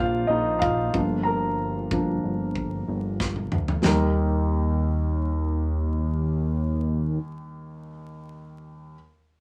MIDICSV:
0, 0, Header, 1, 4, 480
1, 0, Start_track
1, 0, Key_signature, -3, "major"
1, 0, Tempo, 645161
1, 943, Time_signature, 4, 2, 24, 8
1, 6995, End_track
2, 0, Start_track
2, 0, Title_t, "Grand piano"
2, 0, Program_c, 0, 0
2, 0, Control_c, 0, 64, 127
2, 0, Note_on_c, 0, 50, 48
2, 0, Note_on_c, 0, 58, 43
2, 0, Note_on_c, 0, 60, 52
2, 0, Note_on_c, 0, 62, 52
2, 0, Note_on_c, 0, 65, 72
2, 0, Note_on_c, 0, 72, 80
2, 0, Note_on_c, 0, 74, 69
2, 0, Note_on_c, 0, 77, 90
2, 0, Note_on_c, 0, 79, 60
2, 202, Note_on_c, 0, 75, 68
2, 207, Note_off_c, 0, 65, 0
2, 219, Note_off_c, 0, 77, 0
2, 225, Note_on_c, 0, 63, 61
2, 441, Note_on_c, 0, 77, 76
2, 447, Note_off_c, 0, 63, 0
2, 460, Note_off_c, 0, 75, 0
2, 463, Note_on_c, 0, 65, 61
2, 695, Note_on_c, 0, 53, 43
2, 700, Note_off_c, 0, 58, 0
2, 700, Note_on_c, 0, 58, 35
2, 704, Note_off_c, 0, 62, 0
2, 704, Note_on_c, 0, 62, 45
2, 712, Control_c, 0, 64, 0
2, 716, Note_off_c, 0, 50, 0
2, 716, Note_off_c, 0, 74, 0
2, 717, Note_off_c, 0, 79, 0
2, 718, Note_off_c, 0, 72, 0
2, 719, Note_off_c, 0, 60, 0
2, 849, Control_c, 0, 64, 127
2, 913, Note_off_c, 0, 65, 0
2, 918, Note_on_c, 0, 82, 75
2, 943, Note_on_c, 0, 70, 66
2, 946, Note_off_c, 0, 77, 0
2, 1389, Note_off_c, 0, 53, 0
2, 1392, Note_off_c, 0, 58, 0
2, 1394, Note_off_c, 0, 62, 0
2, 1425, Note_on_c, 0, 53, 40
2, 1428, Note_on_c, 0, 58, 38
2, 1429, Note_on_c, 0, 62, 44
2, 1640, Note_off_c, 0, 53, 0
2, 1641, Note_off_c, 0, 58, 0
2, 1642, Note_off_c, 0, 62, 0
2, 2341, Note_off_c, 0, 82, 0
2, 2353, Note_off_c, 0, 70, 0
2, 2844, Note_on_c, 0, 55, 59
2, 2857, Note_on_c, 0, 39, 65
2, 2858, Note_on_c, 0, 63, 54
2, 2873, Control_c, 0, 64, 0
2, 2873, Note_on_c, 0, 70, 68
2, 3001, Control_c, 0, 64, 127
2, 5860, Note_off_c, 0, 55, 0
2, 5867, Note_off_c, 0, 39, 0
2, 5867, Note_off_c, 0, 63, 0
2, 5875, Note_off_c, 0, 70, 0
2, 6655, Control_c, 0, 64, 0
2, 6995, End_track
3, 0, Start_track
3, 0, Title_t, "Analog synth bass"
3, 0, Program_c, 1, 38
3, 0, Note_on_c, 1, 34, 80
3, 192, Note_off_c, 1, 34, 0
3, 218, Note_on_c, 1, 34, 86
3, 671, Note_off_c, 1, 34, 0
3, 699, Note_on_c, 1, 31, 96
3, 1631, Note_off_c, 1, 31, 0
3, 1665, Note_on_c, 1, 31, 76
3, 2114, Note_off_c, 1, 31, 0
3, 2142, Note_on_c, 1, 31, 91
3, 2593, Note_off_c, 1, 31, 0
3, 2621, Note_on_c, 1, 38, 78
3, 2845, Note_off_c, 1, 38, 0
3, 2860, Note_on_c, 1, 39, 89
3, 5348, Note_off_c, 1, 39, 0
3, 6995, End_track
4, 0, Start_track
4, 0, Title_t, "Drums"
4, 460, Note_on_c, 9, 36, 110
4, 534, Note_off_c, 9, 36, 0
4, 699, Note_on_c, 9, 36, 81
4, 774, Note_off_c, 9, 36, 0
4, 1422, Note_on_c, 9, 36, 94
4, 1496, Note_off_c, 9, 36, 0
4, 1901, Note_on_c, 9, 36, 73
4, 1975, Note_off_c, 9, 36, 0
4, 2381, Note_on_c, 9, 36, 91
4, 2383, Note_on_c, 9, 38, 43
4, 2455, Note_off_c, 9, 36, 0
4, 2457, Note_off_c, 9, 38, 0
4, 2499, Note_on_c, 9, 48, 40
4, 2573, Note_off_c, 9, 48, 0
4, 2617, Note_on_c, 9, 45, 68
4, 2691, Note_off_c, 9, 45, 0
4, 2740, Note_on_c, 9, 43, 62
4, 2814, Note_off_c, 9, 43, 0
4, 2859, Note_on_c, 9, 38, 74
4, 2859, Note_on_c, 9, 43, 75
4, 2933, Note_off_c, 9, 38, 0
4, 2933, Note_off_c, 9, 43, 0
4, 6995, End_track
0, 0, End_of_file